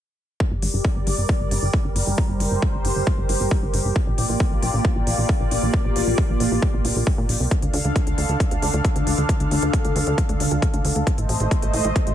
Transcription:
0.40 G3 G4 A#4 D5, kick
0.51 G1
0.62 G1, open hi-hat
0.74 G1
0.85 kick
0.96 G1
1.07 G1, open hi-hat
1.18 G1
1.29 kick
1.40 G1
1.51 G1, open hi-hat
1.62 G1
1.74 kick
1.85 G1
1.96 G1, open hi-hat
2.07 G1
2.18 C5, kick
2.29 G1
2.40 G1, open hi-hat
2.51 G1
2.62 kick
2.74 G1
2.85 G1, open hi-hat
2.96 G1
3.07 kick
3.18 G1
3.29 G1, open hi-hat
3.40 G1
3.51 kick
3.63 G1
3.74 G1, open hi-hat
3.85 G1
3.96 A#3 F4 D5, kick
4.07 A#1
4.18 A#1, open hi-hat
4.29 A#1
4.40 kick
4.51 A#1
4.63 A#1, open hi-hat
4.74 A#1
4.85 kick
4.96 A#1
5.07 A#1, open hi-hat
5.18 A#1
5.29 kick
5.40 A#1
5.51 A#1, open hi-hat
5.63 A#1
5.74 kick
5.85 A#1
5.96 A#1, open hi-hat
6.07 A#1
6.18 kick
6.29 A#1
6.40 A#1, open hi-hat
6.52 A#1
6.62 kick
6.74 A#1
6.85 A#1, open hi-hat
6.96 A#1
7.07 kick
7.18 A#2
7.29 A#1, open hi-hat
7.40 C2
7.51 D3 D4 A4 F5, kick, closed hi-hat
7.62 D2, closed hi-hat
7.74 D2, open hi-hat
7.85 D2, closed hi-hat
7.96 kick, closed hi-hat
8.07 D2, closed hi-hat
8.18 D2, open hi-hat
8.29 D2, closed hi-hat
8.40 kick, closed hi-hat
8.51 D2, closed hi-hat
8.62 D2, open hi-hat
8.74 D2, closed hi-hat
8.85 kick, closed hi-hat
8.96 D2, closed hi-hat
9.07 D2, open hi-hat
9.18 D2, closed hi-hat
9.29 kick, closed hi-hat
9.40 D2, closed hi-hat
9.51 D2, open hi-hat
9.62 D2, closed hi-hat
9.73 kick, closed hi-hat
9.85 D2, closed hi-hat
9.96 D2, open hi-hat
10.07 D2, closed hi-hat
10.18 kick, closed hi-hat
10.29 D2, closed hi-hat
10.40 D2, open hi-hat
10.51 D2, closed hi-hat
10.62 kick, closed hi-hat
10.74 D2, closed hi-hat
10.85 D2, open hi-hat
10.96 D2, closed hi-hat
11.07 A3 C5 D#5, kick, closed hi-hat
11.18 A1, closed hi-hat
11.29 A1, open hi-hat
11.40 A1, closed hi-hat
11.51 kick, closed hi-hat
11.62 A1, closed hi-hat
11.73 A1, open hi-hat
11.85 A1, closed hi-hat
11.96 kick, closed hi-hat
12.07 A1, closed hi-hat

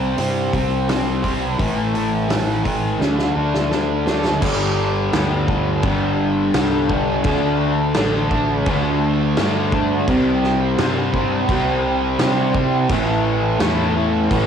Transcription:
Already playing: C2 C3 G3 C4
0.17 G2 C3 G3 C4, open hi-hat
0.53 C2 G3 C4, kick, open hi-hat
0.88 C3 G3 C4, snare, open hi-hat
1.23 G3 C4, kick, open hi-hat
1.59 A1 A2 E3 A3, kick, open hi-hat
1.94 E3 A3, open hi-hat
2.29 A2 E3 A3, snare, open hi-hat
2.64 E3 A3, kick, open hi-hat
3.00 D2 D3 A3 D4, snare
3.19 snare
3.36 D2 A3 D4
3.54 snare
3.71 D3 A3 D4, snare
4.06 A3 D4, snare
4.25 snare
4.42 G1 G2 D3 G3, kick, crash
5.13 D2 G2 D3 G3, snare, crash
5.47 D3 G3, kick
5.83 G1 G2 D3 G3, kick, crash
6.54 C2 G2 D3 G3, snare, crash
6.90 D3 G3, kick
7.24 D2 D3 A3 D4, kick, crash
7.94 A1 D3 A3 D4, snare, crash
8.31 A3 D4, kick
8.66 D2 D3 A3 D4, kick, crash
9.37 G2 D3 A3 D4, snare, crash
9.72 A3 D4, kick
10.08 C2 C3 G3 C4, kick, crash
10.44 snare
10.78 G2 C3 G3 C4, snare, crash
11.14 G3 C4, kick
11.49 C2 C3 G3 C4, kick, crash
12.19 C3 G3 C4, snare, crash
12.54 G3 C4, kick
12.89 A1 A2 E3 A3, kick, crash
13.59 E2 A2 E3 A3, snare, crash
13.94 E3 A3
14.30 A1 A2 E3 A3, kick, crash

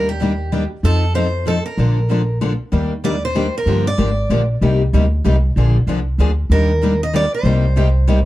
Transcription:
Already playing: D#2
0.09 G4
0.21 D#3 G3 A#3 D4 G4
0.52 D#3 G3 A#3 D4 G4
0.83 F2 F3 C4 D#4 A4
1.15 F3 C4 D#4 A4 C5
1.47 F3 C4 D#4 A4
1.66 A#4
1.77 A#1 D3 F3 A#3 D4 A4
2.10 D3 F3 A#3 D4 A4
2.41 D3 F3 A#3 D4 A4
2.72 D#2 D#3 G3 A#3 D4 G4
3.04 D#3 G3 A#3 D4 G4 D5
3.25 C5
3.35 D#3 G3 A#3 D4 G4
3.58 A#4
3.66 G2 D3 F3 A#3 D4 G4
3.87 D5
3.98 G#1 D3 F3 A#3 D4 G4
4.30 A#1 D3 F3 A#3 D4 G4
4.61 C2 C3 G3 A#3 D#4 G4
4.93 D2 C3 G3 A#3 D#4 G4
5.24 C2 C3 G3 A#3 D#4 G4
5.56 A#1 D3 F3 A#3 D4 G#4
5.87 C2 D3 F3 A#3 D4 G#4
6.18 D2 D3 F3 A#3 D4 G#4
6.50 D#2 D#3 G3 A#3 D4 G4 A#4
6.83 D#3 G3 A#3 D4 G4
7.03 D#5
7.13 D#3 G3 A#3 D4 G4 D5
7.34 C5
7.43 C2 C3 G3 A#3 D#4 G4
7.76 C3 G3 A#3 D#4 G4
8.08 C3 G3 A#3 D#4 G4

